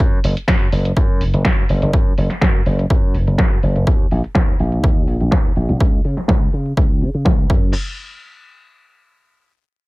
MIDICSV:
0, 0, Header, 1, 4, 480
1, 0, Start_track
1, 0, Time_signature, 4, 2, 24, 8
1, 0, Tempo, 483871
1, 9793, End_track
2, 0, Start_track
2, 0, Title_t, "Slap bass"
2, 0, Program_c, 0, 36
2, 0, Note_on_c, 0, 42, 91
2, 181, Note_off_c, 0, 42, 0
2, 239, Note_on_c, 0, 30, 83
2, 333, Note_off_c, 0, 30, 0
2, 479, Note_on_c, 0, 42, 87
2, 661, Note_off_c, 0, 42, 0
2, 716, Note_on_c, 0, 30, 92
2, 899, Note_off_c, 0, 30, 0
2, 958, Note_on_c, 0, 42, 97
2, 1199, Note_on_c, 0, 30, 76
2, 1213, Note_off_c, 0, 42, 0
2, 1293, Note_off_c, 0, 30, 0
2, 1326, Note_on_c, 0, 30, 88
2, 1410, Note_off_c, 0, 30, 0
2, 1681, Note_on_c, 0, 30, 83
2, 1774, Note_off_c, 0, 30, 0
2, 1807, Note_on_c, 0, 30, 103
2, 1890, Note_off_c, 0, 30, 0
2, 1921, Note_on_c, 0, 42, 96
2, 2102, Note_off_c, 0, 42, 0
2, 2160, Note_on_c, 0, 30, 88
2, 2254, Note_off_c, 0, 30, 0
2, 2399, Note_on_c, 0, 42, 81
2, 2581, Note_off_c, 0, 42, 0
2, 2639, Note_on_c, 0, 30, 93
2, 2821, Note_off_c, 0, 30, 0
2, 3119, Note_on_c, 0, 30, 78
2, 3213, Note_off_c, 0, 30, 0
2, 3248, Note_on_c, 0, 30, 93
2, 3331, Note_off_c, 0, 30, 0
2, 3600, Note_on_c, 0, 30, 84
2, 3694, Note_off_c, 0, 30, 0
2, 3727, Note_on_c, 0, 30, 102
2, 3810, Note_off_c, 0, 30, 0
2, 3840, Note_on_c, 0, 39, 96
2, 4021, Note_off_c, 0, 39, 0
2, 4082, Note_on_c, 0, 34, 86
2, 4175, Note_off_c, 0, 34, 0
2, 4319, Note_on_c, 0, 39, 86
2, 4501, Note_off_c, 0, 39, 0
2, 4561, Note_on_c, 0, 34, 89
2, 4742, Note_off_c, 0, 34, 0
2, 4798, Note_on_c, 0, 39, 96
2, 5040, Note_off_c, 0, 39, 0
2, 5040, Note_on_c, 0, 34, 76
2, 5134, Note_off_c, 0, 34, 0
2, 5167, Note_on_c, 0, 34, 88
2, 5250, Note_off_c, 0, 34, 0
2, 5278, Note_on_c, 0, 39, 86
2, 5461, Note_off_c, 0, 39, 0
2, 5519, Note_on_c, 0, 34, 83
2, 5613, Note_off_c, 0, 34, 0
2, 5645, Note_on_c, 0, 34, 104
2, 5729, Note_off_c, 0, 34, 0
2, 5760, Note_on_c, 0, 37, 95
2, 5941, Note_off_c, 0, 37, 0
2, 5999, Note_on_c, 0, 49, 84
2, 6093, Note_off_c, 0, 49, 0
2, 6239, Note_on_c, 0, 37, 86
2, 6421, Note_off_c, 0, 37, 0
2, 6482, Note_on_c, 0, 49, 96
2, 6662, Note_off_c, 0, 49, 0
2, 6719, Note_on_c, 0, 37, 97
2, 6960, Note_on_c, 0, 49, 80
2, 6975, Note_off_c, 0, 37, 0
2, 7054, Note_off_c, 0, 49, 0
2, 7087, Note_on_c, 0, 49, 93
2, 7170, Note_off_c, 0, 49, 0
2, 7199, Note_on_c, 0, 37, 80
2, 7381, Note_off_c, 0, 37, 0
2, 7439, Note_on_c, 0, 42, 96
2, 7662, Note_off_c, 0, 42, 0
2, 9793, End_track
3, 0, Start_track
3, 0, Title_t, "Muted slap bass strokes"
3, 2289, Note_on_c, 9, 29, 43
3, 2388, Note_off_c, 9, 29, 0
3, 6131, Note_on_c, 9, 29, 42
3, 6230, Note_off_c, 9, 29, 0
3, 9793, End_track
4, 0, Start_track
4, 0, Title_t, "Drums"
4, 0, Note_on_c, 9, 36, 116
4, 0, Note_on_c, 9, 42, 52
4, 98, Note_off_c, 9, 36, 0
4, 99, Note_off_c, 9, 42, 0
4, 238, Note_on_c, 9, 46, 110
4, 337, Note_off_c, 9, 46, 0
4, 366, Note_on_c, 9, 42, 66
4, 466, Note_off_c, 9, 42, 0
4, 473, Note_on_c, 9, 38, 122
4, 478, Note_on_c, 9, 36, 122
4, 479, Note_on_c, 9, 42, 50
4, 572, Note_off_c, 9, 38, 0
4, 577, Note_off_c, 9, 36, 0
4, 578, Note_off_c, 9, 42, 0
4, 718, Note_on_c, 9, 46, 101
4, 818, Note_off_c, 9, 46, 0
4, 845, Note_on_c, 9, 42, 66
4, 945, Note_off_c, 9, 42, 0
4, 958, Note_on_c, 9, 36, 113
4, 959, Note_on_c, 9, 42, 46
4, 1058, Note_off_c, 9, 36, 0
4, 1058, Note_off_c, 9, 42, 0
4, 1200, Note_on_c, 9, 46, 102
4, 1299, Note_off_c, 9, 46, 0
4, 1326, Note_on_c, 9, 42, 62
4, 1425, Note_off_c, 9, 42, 0
4, 1435, Note_on_c, 9, 38, 115
4, 1438, Note_on_c, 9, 36, 113
4, 1440, Note_on_c, 9, 42, 51
4, 1534, Note_off_c, 9, 38, 0
4, 1537, Note_off_c, 9, 36, 0
4, 1539, Note_off_c, 9, 42, 0
4, 1679, Note_on_c, 9, 46, 105
4, 1778, Note_off_c, 9, 46, 0
4, 1807, Note_on_c, 9, 42, 62
4, 1906, Note_off_c, 9, 42, 0
4, 1918, Note_on_c, 9, 42, 56
4, 1919, Note_on_c, 9, 36, 114
4, 2018, Note_off_c, 9, 36, 0
4, 2018, Note_off_c, 9, 42, 0
4, 2160, Note_on_c, 9, 46, 102
4, 2259, Note_off_c, 9, 46, 0
4, 2280, Note_on_c, 9, 38, 37
4, 2285, Note_on_c, 9, 42, 68
4, 2379, Note_off_c, 9, 38, 0
4, 2385, Note_off_c, 9, 42, 0
4, 2395, Note_on_c, 9, 38, 116
4, 2399, Note_on_c, 9, 36, 112
4, 2401, Note_on_c, 9, 42, 54
4, 2494, Note_off_c, 9, 38, 0
4, 2498, Note_off_c, 9, 36, 0
4, 2500, Note_off_c, 9, 42, 0
4, 2640, Note_on_c, 9, 46, 98
4, 2739, Note_off_c, 9, 46, 0
4, 2768, Note_on_c, 9, 42, 70
4, 2868, Note_off_c, 9, 42, 0
4, 2879, Note_on_c, 9, 36, 113
4, 2881, Note_on_c, 9, 42, 50
4, 2978, Note_off_c, 9, 36, 0
4, 2980, Note_off_c, 9, 42, 0
4, 3120, Note_on_c, 9, 46, 99
4, 3219, Note_off_c, 9, 46, 0
4, 3248, Note_on_c, 9, 42, 63
4, 3347, Note_off_c, 9, 42, 0
4, 3355, Note_on_c, 9, 38, 116
4, 3359, Note_on_c, 9, 36, 115
4, 3361, Note_on_c, 9, 42, 51
4, 3454, Note_off_c, 9, 38, 0
4, 3458, Note_off_c, 9, 36, 0
4, 3460, Note_off_c, 9, 42, 0
4, 3601, Note_on_c, 9, 46, 103
4, 3700, Note_off_c, 9, 46, 0
4, 3727, Note_on_c, 9, 42, 66
4, 3826, Note_off_c, 9, 42, 0
4, 3839, Note_on_c, 9, 36, 110
4, 3938, Note_off_c, 9, 36, 0
4, 4080, Note_on_c, 9, 46, 108
4, 4179, Note_off_c, 9, 46, 0
4, 4206, Note_on_c, 9, 42, 70
4, 4305, Note_off_c, 9, 42, 0
4, 4312, Note_on_c, 9, 38, 124
4, 4318, Note_on_c, 9, 36, 115
4, 4411, Note_off_c, 9, 38, 0
4, 4418, Note_off_c, 9, 36, 0
4, 4558, Note_on_c, 9, 46, 96
4, 4657, Note_off_c, 9, 46, 0
4, 4683, Note_on_c, 9, 42, 70
4, 4782, Note_off_c, 9, 42, 0
4, 4798, Note_on_c, 9, 36, 111
4, 4897, Note_off_c, 9, 36, 0
4, 5036, Note_on_c, 9, 46, 99
4, 5135, Note_off_c, 9, 46, 0
4, 5163, Note_on_c, 9, 42, 66
4, 5262, Note_off_c, 9, 42, 0
4, 5271, Note_on_c, 9, 38, 116
4, 5278, Note_on_c, 9, 36, 108
4, 5370, Note_off_c, 9, 38, 0
4, 5377, Note_off_c, 9, 36, 0
4, 5516, Note_on_c, 9, 46, 102
4, 5615, Note_off_c, 9, 46, 0
4, 5645, Note_on_c, 9, 42, 70
4, 5744, Note_off_c, 9, 42, 0
4, 5758, Note_on_c, 9, 36, 113
4, 5857, Note_off_c, 9, 36, 0
4, 5996, Note_on_c, 9, 46, 105
4, 6096, Note_off_c, 9, 46, 0
4, 6119, Note_on_c, 9, 38, 39
4, 6125, Note_on_c, 9, 42, 76
4, 6219, Note_off_c, 9, 38, 0
4, 6224, Note_off_c, 9, 42, 0
4, 6230, Note_on_c, 9, 38, 126
4, 6238, Note_on_c, 9, 36, 115
4, 6329, Note_off_c, 9, 38, 0
4, 6337, Note_off_c, 9, 36, 0
4, 6476, Note_on_c, 9, 46, 101
4, 6575, Note_off_c, 9, 46, 0
4, 6604, Note_on_c, 9, 42, 74
4, 6704, Note_off_c, 9, 42, 0
4, 6718, Note_on_c, 9, 36, 110
4, 6817, Note_off_c, 9, 36, 0
4, 6956, Note_on_c, 9, 46, 99
4, 7056, Note_off_c, 9, 46, 0
4, 7086, Note_on_c, 9, 42, 65
4, 7185, Note_off_c, 9, 42, 0
4, 7192, Note_on_c, 9, 38, 127
4, 7198, Note_on_c, 9, 36, 115
4, 7292, Note_off_c, 9, 38, 0
4, 7297, Note_off_c, 9, 36, 0
4, 7438, Note_on_c, 9, 36, 109
4, 7537, Note_off_c, 9, 36, 0
4, 9793, End_track
0, 0, End_of_file